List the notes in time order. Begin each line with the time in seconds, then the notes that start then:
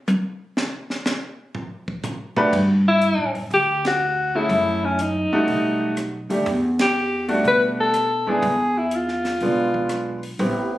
0.08 hi-hat pedal, high tom
0.57 snare
0.90 snare
1.06 snare, hi-hat pedal
1.55 floor tom
1.88 kick
2.03 floor tom, hi-hat pedal
2.37 A3 D4 F#4 G4 B4, floor tom
2.53 G2, kick, crash
2.88 E4
3.02 closed hi-hat
3.18 A2
3.35 F#2, open hi-hat
3.50 D2 G4, open hi-hat
3.85 F#4, snare, ride
4.35 A3 C#4 E4 G#4
4.49 F#2, open hi-hat
4.85 C#4
4.99 D#4, closed hi-hat
5.31 G3 A3 D#4 F#4, muted upright bass stroke
5.47 B1, open hi-hat
5.97 cross-stick, closed hi-hat
6.30 D#2 G3 A3 D4 G4, open hi-hat
6.46 E2, open hi-hat
6.79 G4, snare, ride
7.28 G3 A3 D4 F#4, open hi-hat
7.44 B2 B4, open hi-hat
7.80 A4
7.94 cross-stick, closed hi-hat
8.27 D#2 G#3 B3 D4 E4 G#4
8.42 E2, open hi-hat
8.78 E4
8.91 F4, closed hi-hat
9.08 snare
9.25 snare, open hi-hat
9.41 B1 G#3 B3 D4 F4, open hi-hat
9.74 kick
9.89 cross-stick, closed hi-hat
10.23 open hi-hat
10.39 A1 B3 C4 E4 G4, open hi-hat